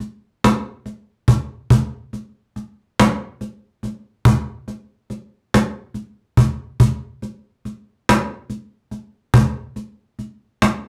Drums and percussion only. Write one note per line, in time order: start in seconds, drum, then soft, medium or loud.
0.00 cajon slap soft
0.44 cajon slap medium
0.86 cajon slap soft
1.28 cajon bass medium
1.70 cajon bass medium
2.13 cajon slap soft
2.56 cajon slap soft
3.00 cajon slap loud
3.41 cajon slap soft
3.83 cajon slap soft
3.85 cajon slap soft
4.25 cajon bass loud
4.68 cajon slap soft
5.10 cajon slap soft
5.54 cajon slap medium
5.94 cajon slap soft
6.37 cajon bass medium
6.80 cajon bass medium
7.22 cajon slap soft
7.65 cajon slap soft
8.09 cajon slap loud
8.50 cajon slap soft
8.91 cajon slap soft
9.34 cajon bass loud
9.76 cajon slap soft
10.19 cajon slap soft
10.62 cajon slap medium